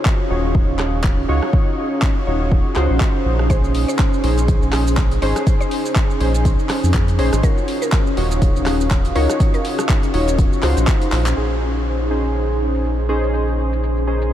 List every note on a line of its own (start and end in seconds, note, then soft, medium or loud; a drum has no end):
0.00 7.39 C#4 medium
0.00 14.33 C#4 medium
0.00 0.28 D#4 medium
0.00 14.33 D#4 medium
0.00 0.28 F4 medium
0.00 0.28 F#4 medium
0.00 14.33 G#4 medium
0.00 0.28 C#5 medium
0.00 3.46 F5 medium
0.00 7.39 D#6 medium
0.05 kick loud
0.05 clap loud
0.30 0.65 D#1 loud
0.30 1.26 D#4 medium
0.30 1.26 F4 medium
0.30 1.26 F#4 medium
0.30 1.26 C#5 medium
0.55 kick loud
0.69 0.78 D#1 medium
0.79 1.26 D#1 medium
0.79 cross-stick medium
0.79 clap medium
1.04 kick loud
1.04 clap loud
1.28 1.40 C#2 medium
1.28 1.51 D#4 medium
1.28 1.51 F4 medium
1.28 1.51 F#4 medium
1.28 1.51 C#5 loud
1.42 cross-stick medium
1.53 2.24 D#4 medium
1.53 2.24 F4 medium
1.53 2.24 F#4 medium
1.53 2.25 C#5 medium
1.53 kick loud
2.02 kick loud
2.02 clap loud
2.27 2.62 D#1 loud
2.27 2.74 D#4 medium
2.27 2.74 F4 medium
2.27 2.74 F#4 medium
2.27 2.74 C#5 medium
2.52 kick loud
2.76 2.88 C#2 medium
2.76 3.47 D#4 medium
2.76 3.47 F4 medium
2.76 3.47 F#4 medium
2.76 3.47 C5 loud
2.76 cross-stick medium
2.76 clap medium
2.90 2.99 A#1 medium
3.00 kick loud
3.00 clap loud
3.25 3.85 A#1 loud
3.39 cross-stick medium
3.50 4.21 C#4 medium
3.50 4.21 D#4 medium
3.50 4.21 G#4 medium
3.50 3.80 C5 loud
3.50 4.21 C5 medium
3.50 7.39 G#5 medium
3.50 5.45 C6 medium
3.50 kick loud
3.50 closed hi-hat medium
3.50 shaker medium
3.64 shaker soft
3.75 open hi-hat loud
3.88 4.18 C5 loud
3.88 shaker medium
3.99 kick loud
3.99 clap loud
3.99 closed hi-hat medium
3.99 shaker medium
4.14 shaker soft
4.23 4.59 A#1 loud
4.23 5.19 C#4 medium
4.23 5.19 D#4 medium
4.23 5.20 G#4 medium
4.23 5.20 C5 medium
4.23 open hi-hat medium
4.38 closed hi-hat soft
4.38 shaker medium
4.48 kick loud
4.48 closed hi-hat medium
4.48 shaker medium
4.62 4.71 A#1 medium
4.62 shaker soft
4.73 5.19 A#1 medium
4.73 cross-stick medium
4.73 clap medium
4.73 open hi-hat loud
4.87 shaker medium
4.97 kick loud
4.97 clap loud
4.97 closed hi-hat medium
4.97 shaker medium
5.11 closed hi-hat soft
5.11 shaker soft
5.22 5.34 G#1 medium
5.22 5.44 C#4 medium
5.22 5.44 D#4 medium
5.22 5.44 G#4 medium
5.22 5.53 C5 medium
5.22 5.44 C5 loud
5.22 open hi-hat medium
5.36 cross-stick medium
5.36 closed hi-hat soft
5.36 shaker medium
5.46 6.18 C#4 medium
5.46 6.18 D#4 medium
5.46 6.18 G#4 medium
5.46 6.18 C5 medium
5.46 kick loud
5.46 closed hi-hat medium
5.46 shaker medium
5.61 5.80 C5 medium
5.61 shaker soft
5.71 open hi-hat loud
5.86 shaker medium
5.96 kick loud
5.96 clap loud
5.96 closed hi-hat medium
5.96 shaker medium
6.10 shaker soft
6.20 6.56 A#1 loud
6.20 7.16 C#4 medium
6.20 7.16 D#4 medium
6.20 7.16 G#4 medium
6.20 7.16 C5 medium
6.20 open hi-hat medium
6.34 closed hi-hat soft
6.34 shaker medium
6.45 kick loud
6.45 closed hi-hat medium
6.45 shaker medium
6.59 shaker soft
6.69 cross-stick medium
6.69 clap medium
6.69 open hi-hat loud
6.83 7.20 F2 medium
6.83 shaker medium
6.94 kick loud
6.94 clap loud
6.94 closed hi-hat medium
6.94 shaker medium
7.08 closed hi-hat medium
7.08 shaker soft
7.19 7.31 A#1 medium
7.19 7.41 C#4 medium
7.19 7.41 D#4 medium
7.19 7.41 G#4 medium
7.19 7.41 C5 loud
7.19 open hi-hat medium
7.33 7.42 G#1 loud
7.33 cross-stick medium
7.33 closed hi-hat medium
7.33 shaker medium
7.43 11.33 C#4 medium
7.43 8.15 F4 medium
7.43 8.15 F#4 medium
7.43 7.74 A#4 loud
7.43 8.15 C#5 medium
7.43 11.33 F5 medium
7.43 11.33 D#6 medium
7.43 kick loud
7.43 closed hi-hat medium
7.43 shaker medium
7.58 shaker soft
7.68 open hi-hat loud
7.82 8.11 A#4 loud
7.82 shaker medium
7.92 kick loud
7.92 clap loud
7.92 closed hi-hat medium
7.92 shaker medium
8.07 shaker soft
8.17 8.52 D#1 loud
8.17 9.13 D#4 medium
8.17 9.13 F4 medium
8.17 9.13 F#4 medium
8.17 9.13 C#5 medium
8.17 open hi-hat medium
8.31 closed hi-hat soft
8.31 shaker medium
8.42 kick loud
8.42 closed hi-hat medium
8.42 shaker medium
8.56 8.65 D#1 medium
8.56 shaker soft
8.66 9.13 D#1 medium
8.66 cross-stick medium
8.66 clap medium
8.66 open hi-hat loud
8.81 shaker medium
8.91 kick loud
8.91 clap loud
8.91 closed hi-hat medium
8.91 shaker medium
9.05 closed hi-hat medium
9.05 shaker soft
9.15 9.27 C#2 medium
9.15 9.37 D#4 loud
9.15 9.38 F4 medium
9.15 9.38 F#4 medium
9.15 9.46 A#4 loud
9.15 9.38 C#5 loud
9.15 open hi-hat medium
9.29 cross-stick medium
9.29 closed hi-hat medium
9.29 shaker medium
9.40 10.11 D#4 medium
9.40 10.11 F4 medium
9.40 10.11 F#4 medium
9.40 10.11 C#5 medium
9.40 kick loud
9.40 closed hi-hat medium
9.40 shaker medium
9.54 9.73 A#4 medium
9.54 closed hi-hat soft
9.54 shaker soft
9.65 open hi-hat loud
9.79 cross-stick medium
9.79 closed hi-hat soft
9.79 shaker medium
9.89 kick loud
9.89 clap loud
9.89 closed hi-hat medium
9.89 shaker medium
10.03 closed hi-hat soft
10.03 shaker soft
10.14 10.49 D#1 loud
10.14 10.61 D#4 medium
10.14 10.61 F4 medium
10.14 10.61 F#4 medium
10.14 10.61 C#5 medium
10.14 open hi-hat medium
10.28 closed hi-hat soft
10.28 shaker medium
10.38 kick loud
10.38 closed hi-hat medium
10.38 shaker medium
10.53 shaker soft
10.63 10.75 C#2 medium
10.63 11.34 D#4 medium
10.63 11.34 F4 medium
10.63 11.34 F#4 medium
10.63 11.34 C5 loud
10.63 cross-stick medium
10.63 clap medium
10.63 open hi-hat loud
10.77 10.86 A#1 medium
10.77 closed hi-hat soft
10.77 shaker medium
10.87 kick loud
10.87 clap loud
10.87 closed hi-hat medium
10.87 shaker medium
11.02 closed hi-hat medium
11.02 shaker soft
11.12 11.34 A#1 loud
11.12 clap medium
11.12 open hi-hat medium
11.26 clap loud
11.26 closed hi-hat medium
11.26 shaker medium
11.37 14.33 A#1 medium
11.37 12.08 C#4 medium
11.37 14.33 C#4 medium
11.37 12.08 D#4 medium
11.37 12.08 G#4 medium
11.37 12.08 C5 medium
11.37 14.33 G#5 medium
11.37 13.32 C6 medium
11.37 14.33 D#6 medium
11.37 crash medium
11.37 shaker medium
11.51 shaker soft
11.76 shaker medium
11.87 shaker medium
12.00 shaker soft
12.10 13.06 C#4 medium
12.10 13.06 D#4 medium
12.10 13.06 G#4 medium
12.10 13.07 C5 medium
12.25 shaker medium
12.36 shaker soft
12.50 shaker soft
12.74 shaker medium
12.85 shaker medium
12.99 shaker soft
13.09 13.31 C#4 medium
13.09 13.31 D#4 medium
13.09 13.31 G#4 medium
13.09 13.31 C5 loud
13.23 shaker medium
13.33 14.05 C#4 medium
13.33 14.05 D#4 medium
13.33 14.05 G#4 medium
13.33 14.05 C5 medium
13.33 14.33 A#5 medium
13.33 shaker soft
13.48 shaker soft
13.73 shaker medium
13.83 shaker soft
13.97 shaker soft
14.07 14.33 C#4 medium
14.07 14.33 D#4 medium
14.07 14.33 G#4 medium
14.07 14.33 C5 medium
14.22 shaker medium